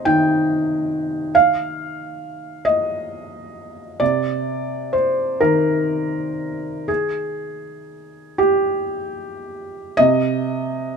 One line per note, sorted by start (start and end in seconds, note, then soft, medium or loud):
0.00 1.31 C3 soft
0.00 1.36 C5 medium
0.00 1.36 D#5 medium
0.05 4.01 D#3 soft
0.05 1.35 G5 medium
1.35 2.66 F5 medium
2.65 4.00 D#5 medium
4.00 6.84 C3 medium
4.00 4.93 D5 medium
4.93 5.41 C5 medium
5.41 9.97 D#3 soft
5.41 6.88 A#4 medium
6.88 8.38 G#4 medium
8.38 9.97 G4 medium
9.97 10.97 C3 medium
9.97 10.97 D#5 loud